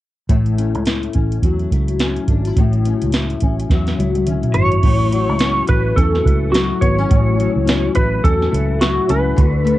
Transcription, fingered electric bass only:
0.29 0.75 A1 medium
0.75 1.07 C#2 medium
1.15 1.38 A1 medium
1.42 1.65 E2 medium
1.72 2.17 C#2 medium
2.28 2.51 G#1 medium
2.56 2.93 A1 medium
3.02 3.34 C#2 medium
3.42 3.65 A1 medium
3.70 3.93 E2 medium
3.98 4.44 C#2 medium
4.55 4.77 G#1 medium
4.83 5.29 A1 medium
5.29 5.61 C#2 medium
5.69 5.92 A1 medium
5.97 6.20 E2 medium
6.26 6.71 C#2 medium
6.82 7.04 G#1 medium
7.11 7.47 A1 medium
7.56 7.87 C#2 medium
7.97 8.19 A1 medium
8.24 8.46 E2 medium
8.53 8.98 C#2 medium
9.09 9.32 C#2 medium
9.38 9.74 D2 medium

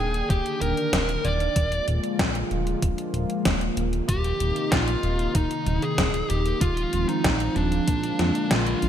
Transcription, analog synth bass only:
0.00 0.23 D#1 medium
0.30 0.42 D#1 loud
0.61 0.74 D#1 loud
0.93 1.17 D#1 medium
1.25 1.49 D#1 medium
1.56 1.80 D#1 loud
1.88 2.00 D#1 medium
2.19 2.44 A#1 medium
2.51 2.75 D#1 medium
2.82 2.95 D#1 loud
3.14 3.26 D#1 loud
3.46 3.70 D#1 medium
3.77 4.01 D#1 medium
4.09 4.33 D#1 loud
4.40 4.52 D#1 medium
4.72 4.96 A#1 medium
5.04 5.28 D#1 medium
5.35 5.47 D#1 loud
5.67 5.79 D#1 loud
5.98 6.23 D#1 medium
6.30 6.54 D#1 medium
6.61 6.86 D#1 loud
6.93 7.05 D#1 medium
7.25 7.49 A#1 medium
7.56 7.80 D#1 medium
7.88 8.12 A#2 medium
8.20 8.32 F2 loud
8.51 8.75 A#1 medium
8.82 8.89 A#1 loud

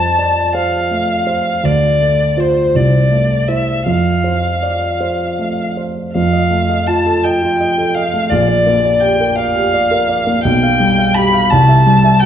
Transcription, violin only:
0.00 0.56 A5 medium
0.56 1.66 F5 medium
1.65 2.42 D5 medium
2.40 2.77 C5 soft
2.76 3.50 D5 medium
3.48 3.86 E5 medium
3.87 5.74 F5 medium
6.14 6.88 F5 medium
6.87 7.25 A5 medium
7.23 7.96 G5 medium
7.95 8.31 F5 medium
8.30 9.02 D5 medium
9.00 9.38 G5 medium
9.36 10.43 F5 medium
10.43 11.16 G5 medium
11.14 11.52 B5 medium
11.51 12.21 A5 medium
12.20 12.26 G5 medium

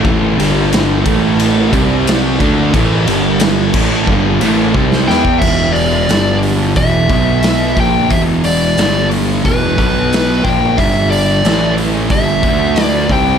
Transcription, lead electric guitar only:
5.08 5.39 G5 medium
5.40 5.75 E5 medium
5.72 6.37 D5 medium
6.77 7.80 E5 medium
7.80 8.13 G5 loud
8.11 8.20 E5 medium
8.45 9.07 D5 medium
9.46 10.48 B4 medium
10.44 10.78 G5 loud
10.78 11.08 E5 medium
11.10 11.73 D5 loud
12.12 12.84 E5 medium
12.84 13.13 D5 medium
13.12 13.38 G5 loud

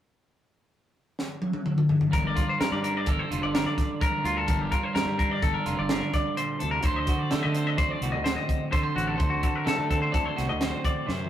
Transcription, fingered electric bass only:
2.13 2.34 G1 medium
2.61 2.71 G2 medium
2.72 3.04 G2 medium
3.07 3.18 G1 medium
3.31 3.41 F1 medium
3.43 3.64 G1 medium
4.24 4.46 D2 medium
4.49 4.70 G1 medium
4.95 5.05 G2 medium
5.05 5.38 G2 medium
5.43 5.53 G1 medium
5.66 5.77 F1 medium
5.79 6.00 G1 medium
6.62 6.83 D2 medium
6.83 7.05 D2 medium
7.32 7.42 D3 medium
7.45 7.76 D3 medium
7.78 7.89 D2 medium
8.01 8.12 C2 medium
8.15 8.35 D2 medium
8.96 9.17 A1 medium
9.20 9.41 D2 medium
9.67 9.77 D3 medium
9.78 10.10 D3 medium
10.14 10.24 D2 medium
10.38 10.48 C2 medium
10.50 10.71 D2 medium
11.08 11.29 F#2 medium

